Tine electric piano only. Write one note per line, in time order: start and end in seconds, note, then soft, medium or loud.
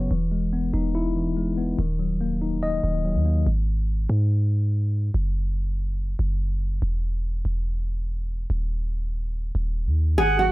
0.00 0.13 C#3 medium
0.00 0.13 F#3 medium
0.00 0.13 B3 medium
0.00 0.11 C#4 medium
0.00 0.11 C#5 loud
0.11 1.15 E3 medium
0.32 1.36 G#3 medium
0.53 1.57 B3 medium
0.73 1.79 D#4 medium
0.95 1.79 E4 loud
1.16 1.79 E3 medium
1.37 1.79 G#3 medium
1.58 1.79 B3 medium
1.79 2.82 D#3 loud
1.99 3.03 F#3 medium
2.21 3.24 A#3 medium
2.42 3.47 D#4 medium
2.63 3.47 D#5 loud
2.84 3.47 D#3 medium
3.05 3.47 F#3 medium
3.26 3.47 A#3 medium
10.18 10.52 D#3 medium
10.39 10.52 F#3 medium